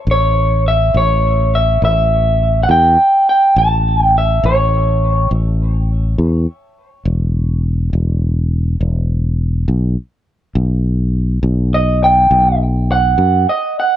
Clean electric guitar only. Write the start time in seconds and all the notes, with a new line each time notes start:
0.11 C#5
0.68 E5
0.97 C#5
1.55 E5
1.85 E5
2.63 F#5
2.71 G5
3.29 G5
3.58 A5
4.04 G5
4.18 E5
4.46 C#5
11.74 D#5
12.04 G5
12.92 F#5
13.49 D#5
13.80 F#5